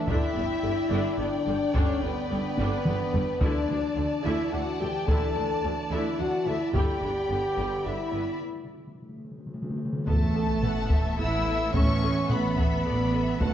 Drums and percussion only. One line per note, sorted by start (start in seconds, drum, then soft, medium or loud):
0.08 taiko medium
1.75 taiko medium
2.58 taiko high medium
2.85 taiko mid medium
3.14 taiko low medium
3.41 taiko medium
5.08 taiko medium
6.74 taiko medium
10.07 taiko medium
10.63 taiko low-mid medium
10.90 taiko medium
11.74 taiko medium
12.30 taiko low-mid medium
12.57 taiko medium
13.41 taiko medium